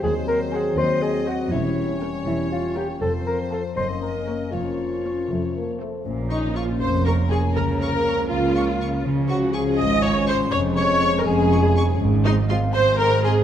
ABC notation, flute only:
X:1
M:6/8
L:1/8
Q:3/8=80
K:Bbm
V:1 name="Flute"
z6 | z6 | z6 | z6 |
z e f c' b a | b b2 f3 | z g a e' d' c' | d' d'2 a3 |
[K:Fm] z e f c' b a |]